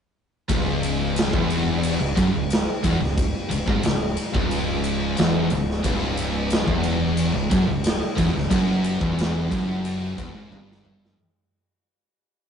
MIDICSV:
0, 0, Header, 1, 4, 480
1, 0, Start_track
1, 0, Key_signature, 4, "minor"
1, 0, Tempo, 667408
1, 360, Time_signature, 4, 2, 24, 8
1, 8985, End_track
2, 0, Start_track
2, 0, Title_t, "Distorted electric guitar"
2, 0, Program_c, 0, 30
2, 358, Note_on_c, 0, 37, 101
2, 953, Note_off_c, 0, 37, 0
2, 959, Note_on_c, 0, 40, 90
2, 1434, Note_off_c, 0, 40, 0
2, 1441, Note_on_c, 0, 37, 79
2, 1550, Note_off_c, 0, 37, 0
2, 1553, Note_on_c, 0, 42, 110
2, 1668, Note_off_c, 0, 42, 0
2, 1670, Note_on_c, 0, 37, 76
2, 1869, Note_off_c, 0, 37, 0
2, 2040, Note_on_c, 0, 40, 107
2, 2154, Note_off_c, 0, 40, 0
2, 2162, Note_on_c, 0, 37, 76
2, 2355, Note_off_c, 0, 37, 0
2, 2511, Note_on_c, 0, 37, 75
2, 2627, Note_off_c, 0, 37, 0
2, 2630, Note_on_c, 0, 44, 108
2, 2749, Note_off_c, 0, 44, 0
2, 2759, Note_on_c, 0, 37, 80
2, 2953, Note_off_c, 0, 37, 0
2, 3111, Note_on_c, 0, 37, 97
2, 3709, Note_off_c, 0, 37, 0
2, 3726, Note_on_c, 0, 40, 103
2, 3956, Note_off_c, 0, 40, 0
2, 3962, Note_on_c, 0, 37, 76
2, 4153, Note_off_c, 0, 37, 0
2, 4201, Note_on_c, 0, 37, 101
2, 4791, Note_off_c, 0, 37, 0
2, 4794, Note_on_c, 0, 40, 102
2, 5269, Note_off_c, 0, 40, 0
2, 5275, Note_on_c, 0, 37, 81
2, 5397, Note_off_c, 0, 37, 0
2, 5402, Note_on_c, 0, 42, 108
2, 5509, Note_off_c, 0, 42, 0
2, 5512, Note_on_c, 0, 37, 70
2, 5707, Note_off_c, 0, 37, 0
2, 5873, Note_on_c, 0, 40, 105
2, 5986, Note_off_c, 0, 40, 0
2, 5989, Note_on_c, 0, 37, 75
2, 6111, Note_off_c, 0, 37, 0
2, 6114, Note_on_c, 0, 42, 109
2, 6469, Note_off_c, 0, 42, 0
2, 6476, Note_on_c, 0, 40, 104
2, 6826, Note_off_c, 0, 40, 0
2, 6829, Note_on_c, 0, 42, 102
2, 7307, Note_off_c, 0, 42, 0
2, 7318, Note_on_c, 0, 40, 106
2, 7431, Note_off_c, 0, 40, 0
2, 7439, Note_on_c, 0, 44, 101
2, 7552, Note_off_c, 0, 44, 0
2, 7552, Note_on_c, 0, 43, 98
2, 8029, Note_off_c, 0, 43, 0
2, 8985, End_track
3, 0, Start_track
3, 0, Title_t, "Fingered electric bass"
3, 0, Program_c, 1, 33
3, 357, Note_on_c, 1, 25, 102
3, 932, Note_off_c, 1, 25, 0
3, 956, Note_on_c, 1, 28, 101
3, 1411, Note_off_c, 1, 28, 0
3, 1442, Note_on_c, 1, 25, 82
3, 1554, Note_off_c, 1, 25, 0
3, 1565, Note_on_c, 1, 30, 92
3, 1676, Note_off_c, 1, 30, 0
3, 1683, Note_on_c, 1, 25, 77
3, 1906, Note_off_c, 1, 25, 0
3, 2046, Note_on_c, 1, 28, 93
3, 2156, Note_off_c, 1, 28, 0
3, 2166, Note_on_c, 1, 25, 74
3, 2388, Note_off_c, 1, 25, 0
3, 2520, Note_on_c, 1, 25, 75
3, 2633, Note_off_c, 1, 25, 0
3, 2644, Note_on_c, 1, 32, 90
3, 2755, Note_off_c, 1, 32, 0
3, 2764, Note_on_c, 1, 25, 91
3, 2987, Note_off_c, 1, 25, 0
3, 3123, Note_on_c, 1, 25, 98
3, 3693, Note_off_c, 1, 25, 0
3, 3730, Note_on_c, 1, 28, 98
3, 3949, Note_off_c, 1, 28, 0
3, 3966, Note_on_c, 1, 25, 87
3, 4187, Note_off_c, 1, 25, 0
3, 4206, Note_on_c, 1, 25, 104
3, 4773, Note_off_c, 1, 25, 0
3, 4800, Note_on_c, 1, 28, 95
3, 5250, Note_off_c, 1, 28, 0
3, 5279, Note_on_c, 1, 25, 90
3, 5391, Note_off_c, 1, 25, 0
3, 5402, Note_on_c, 1, 30, 101
3, 5512, Note_off_c, 1, 30, 0
3, 5521, Note_on_c, 1, 25, 86
3, 5743, Note_off_c, 1, 25, 0
3, 5884, Note_on_c, 1, 28, 107
3, 5993, Note_off_c, 1, 28, 0
3, 6002, Note_on_c, 1, 25, 84
3, 6112, Note_off_c, 1, 25, 0
3, 6119, Note_on_c, 1, 30, 96
3, 6453, Note_off_c, 1, 30, 0
3, 6484, Note_on_c, 1, 28, 91
3, 6816, Note_off_c, 1, 28, 0
3, 6842, Note_on_c, 1, 30, 101
3, 7292, Note_off_c, 1, 30, 0
3, 7323, Note_on_c, 1, 28, 91
3, 7427, Note_off_c, 1, 28, 0
3, 7432, Note_on_c, 1, 32, 100
3, 7547, Note_off_c, 1, 32, 0
3, 7568, Note_on_c, 1, 31, 95
3, 8015, Note_off_c, 1, 31, 0
3, 8985, End_track
4, 0, Start_track
4, 0, Title_t, "Drums"
4, 354, Note_on_c, 9, 51, 93
4, 357, Note_on_c, 9, 36, 114
4, 426, Note_off_c, 9, 51, 0
4, 428, Note_off_c, 9, 36, 0
4, 597, Note_on_c, 9, 51, 80
4, 669, Note_off_c, 9, 51, 0
4, 836, Note_on_c, 9, 51, 108
4, 856, Note_on_c, 9, 38, 111
4, 908, Note_off_c, 9, 51, 0
4, 928, Note_off_c, 9, 38, 0
4, 960, Note_on_c, 9, 36, 110
4, 1032, Note_off_c, 9, 36, 0
4, 1081, Note_on_c, 9, 51, 75
4, 1153, Note_off_c, 9, 51, 0
4, 1318, Note_on_c, 9, 51, 113
4, 1390, Note_off_c, 9, 51, 0
4, 1562, Note_on_c, 9, 36, 106
4, 1562, Note_on_c, 9, 51, 81
4, 1634, Note_off_c, 9, 36, 0
4, 1634, Note_off_c, 9, 51, 0
4, 1801, Note_on_c, 9, 51, 103
4, 1821, Note_on_c, 9, 38, 110
4, 1873, Note_off_c, 9, 51, 0
4, 1893, Note_off_c, 9, 38, 0
4, 2042, Note_on_c, 9, 51, 77
4, 2043, Note_on_c, 9, 36, 101
4, 2114, Note_off_c, 9, 51, 0
4, 2115, Note_off_c, 9, 36, 0
4, 2185, Note_on_c, 9, 38, 33
4, 2257, Note_off_c, 9, 38, 0
4, 2284, Note_on_c, 9, 36, 102
4, 2284, Note_on_c, 9, 51, 99
4, 2356, Note_off_c, 9, 36, 0
4, 2356, Note_off_c, 9, 51, 0
4, 2525, Note_on_c, 9, 51, 74
4, 2597, Note_off_c, 9, 51, 0
4, 2644, Note_on_c, 9, 36, 113
4, 2716, Note_off_c, 9, 36, 0
4, 2756, Note_on_c, 9, 51, 99
4, 2776, Note_on_c, 9, 38, 107
4, 2828, Note_off_c, 9, 51, 0
4, 2848, Note_off_c, 9, 38, 0
4, 2997, Note_on_c, 9, 51, 77
4, 3069, Note_off_c, 9, 51, 0
4, 3125, Note_on_c, 9, 36, 105
4, 3197, Note_off_c, 9, 36, 0
4, 3244, Note_on_c, 9, 51, 91
4, 3316, Note_off_c, 9, 51, 0
4, 3480, Note_on_c, 9, 51, 75
4, 3552, Note_off_c, 9, 51, 0
4, 3718, Note_on_c, 9, 51, 103
4, 3738, Note_on_c, 9, 38, 116
4, 3790, Note_off_c, 9, 51, 0
4, 3810, Note_off_c, 9, 38, 0
4, 3956, Note_on_c, 9, 51, 67
4, 4028, Note_off_c, 9, 51, 0
4, 4099, Note_on_c, 9, 38, 30
4, 4171, Note_off_c, 9, 38, 0
4, 4201, Note_on_c, 9, 51, 100
4, 4204, Note_on_c, 9, 36, 103
4, 4273, Note_off_c, 9, 51, 0
4, 4275, Note_off_c, 9, 36, 0
4, 4440, Note_on_c, 9, 51, 69
4, 4512, Note_off_c, 9, 51, 0
4, 4677, Note_on_c, 9, 51, 100
4, 4697, Note_on_c, 9, 38, 116
4, 4749, Note_off_c, 9, 51, 0
4, 4769, Note_off_c, 9, 38, 0
4, 4801, Note_on_c, 9, 36, 102
4, 4873, Note_off_c, 9, 36, 0
4, 4916, Note_on_c, 9, 51, 74
4, 4988, Note_off_c, 9, 51, 0
4, 5158, Note_on_c, 9, 51, 96
4, 5230, Note_off_c, 9, 51, 0
4, 5403, Note_on_c, 9, 36, 116
4, 5403, Note_on_c, 9, 51, 79
4, 5474, Note_off_c, 9, 36, 0
4, 5475, Note_off_c, 9, 51, 0
4, 5639, Note_on_c, 9, 51, 107
4, 5659, Note_on_c, 9, 38, 108
4, 5711, Note_off_c, 9, 51, 0
4, 5731, Note_off_c, 9, 38, 0
4, 5882, Note_on_c, 9, 36, 94
4, 5882, Note_on_c, 9, 51, 75
4, 5953, Note_off_c, 9, 36, 0
4, 5954, Note_off_c, 9, 51, 0
4, 6025, Note_on_c, 9, 38, 30
4, 6097, Note_off_c, 9, 38, 0
4, 6120, Note_on_c, 9, 36, 112
4, 6120, Note_on_c, 9, 51, 103
4, 6192, Note_off_c, 9, 36, 0
4, 6192, Note_off_c, 9, 51, 0
4, 6360, Note_on_c, 9, 51, 71
4, 6432, Note_off_c, 9, 51, 0
4, 6482, Note_on_c, 9, 36, 108
4, 6554, Note_off_c, 9, 36, 0
4, 6607, Note_on_c, 9, 51, 107
4, 6627, Note_on_c, 9, 38, 116
4, 6678, Note_off_c, 9, 51, 0
4, 6699, Note_off_c, 9, 38, 0
4, 6843, Note_on_c, 9, 36, 113
4, 6846, Note_on_c, 9, 51, 74
4, 6915, Note_off_c, 9, 36, 0
4, 6918, Note_off_c, 9, 51, 0
4, 7083, Note_on_c, 9, 51, 96
4, 7155, Note_off_c, 9, 51, 0
4, 7323, Note_on_c, 9, 36, 111
4, 7323, Note_on_c, 9, 51, 72
4, 7394, Note_off_c, 9, 51, 0
4, 7395, Note_off_c, 9, 36, 0
4, 7568, Note_on_c, 9, 48, 66
4, 7640, Note_off_c, 9, 48, 0
4, 7707, Note_on_c, 9, 38, 63
4, 7779, Note_off_c, 9, 38, 0
4, 7802, Note_on_c, 9, 45, 85
4, 7874, Note_off_c, 9, 45, 0
4, 7948, Note_on_c, 9, 38, 89
4, 8020, Note_off_c, 9, 38, 0
4, 8985, End_track
0, 0, End_of_file